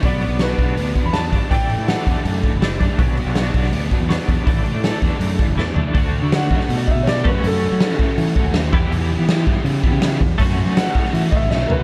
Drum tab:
HH |o-o-o-o-o-o-o-o-|o-o-o-o-o-o-o-o-|o-o-o-o-o-o-o-o-|o-o-o-o-o-o-----|
SD |----o-------o---|----o-------o---|----o--o----o---|----o-------o---|
FT |----------------|----------------|----------------|--------------o-|
BD |o-----o---o---o-|o-----o---o---o-|o-----o---o---o-|o-----o---o-----|

HH |o---o---o---o---|o---o---o---o---|o---o---o---o---|o---o---o-------|
SD |----o--o----o---|----o-------o---|----o-------o---|----o--o----o---|
FT |----------------|----------------|----------------|--------------o-|
BD |o-----o---o---o-|------o---o---o-|------o---o---o-|o-----o---o-----|